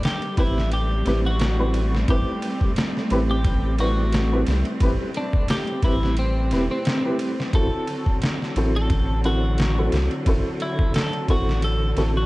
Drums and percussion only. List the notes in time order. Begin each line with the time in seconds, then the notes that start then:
0.03 snare, ride
0.22 ride
0.37 kick, ride
0.58 snare
0.72 ride
1.06 snare, ride
1.40 snare, ride
1.74 ride
1.95 snare
2.08 kick, ride
2.42 ride
2.61 kick
2.76 snare, ride
2.97 snare
3.10 ride
3.45 kick, ride
3.79 ride
4.12 snare, ride
4.47 snare, ride
4.65 ride
4.80 kick, ride
5.14 ride
5.33 kick
5.48 snare, ride
5.67 ride
5.82 kick, ride
6.03 snare
6.17 ride
6.51 snare, ride
6.85 snare, ride
7.19 ride
7.40 snare
7.53 kick, ride
7.87 ride
8.06 kick
8.22 snare, ride
8.42 snare
8.56 ride
8.90 kick, ride
9.24 ride
9.58 snare, ride
9.92 snare, ride
10.11 ride
10.26 kick, ride
10.60 ride
10.79 kick
10.94 snare, ride
11.13 ride
11.28 kick, ride
11.49 snare
11.62 ride
11.97 snare, ride